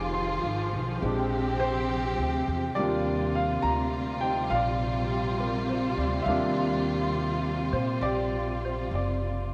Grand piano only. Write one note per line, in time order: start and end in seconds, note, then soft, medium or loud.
0.00 1.03 G3 soft
0.00 1.00 G#3 soft
0.00 1.02 C4 soft
0.00 1.03 D#4 soft
0.00 0.99 D#5 medium
0.00 1.04 G#5 medium
0.00 0.13 D6 medium
0.14 0.98 C6 medium
1.01 2.76 G#3 soft
1.01 2.77 C4 soft
1.05 2.78 D4 soft
1.05 2.77 G4 medium
1.60 2.43 C5 medium
2.75 6.26 G3 soft
2.75 6.26 A#3 soft
2.75 6.27 D4 soft
2.75 4.23 G4 medium
2.75 3.30 D5 medium
2.82 6.27 F4 medium
3.35 3.62 F5 medium
3.62 4.18 A#5 medium
4.21 6.26 C4 soft
4.21 6.27 D#4 soft
4.21 4.52 G5 medium
4.25 5.10 G4 soft
4.50 6.17 F5 medium
4.55 5.97 D5 medium
5.12 5.56 G4 soft
5.40 5.94 A#4 soft
5.69 6.14 C5 soft
5.98 6.27 D5 soft
6.22 6.27 E5 medium
6.22 7.09 F5 medium
6.27 9.54 G3 soft
6.27 9.54 A#3 soft
6.27 9.54 D4 soft
6.27 9.54 F4 soft
6.27 7.99 D5 medium
7.73 8.03 C5 medium
8.03 9.54 G4 medium
8.03 8.94 D5 medium
8.65 8.93 C5 medium
8.95 9.54 D5 medium